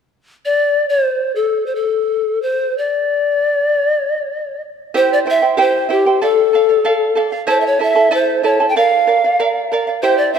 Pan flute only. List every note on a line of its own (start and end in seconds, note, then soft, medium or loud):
0.45 0.86 D5 medium
0.89 1.33 C5 medium
1.36 1.64 A4 medium
1.66 1.77 C5 soft
1.75 2.42 A4 medium
2.42 2.79 C5 medium
2.78 4.61 D5 medium
4.97 5.11 C5 medium
5.13 5.19 D5 medium
5.30 5.58 E5 medium
5.61 5.89 C5 medium
5.91 6.25 G4 medium
6.23 7.18 A4 medium
7.50 7.62 C5 medium
7.60 7.68 E5 medium
7.67 7.82 C#5 medium
7.82 8.16 E5 medium
8.14 8.46 C5 medium
8.45 8.68 C#5 medium
8.69 8.79 G5 medium
8.77 9.72 F5 medium
10.02 10.19 C5 medium
10.18 10.35 D5 medium
10.33 10.39 E5 medium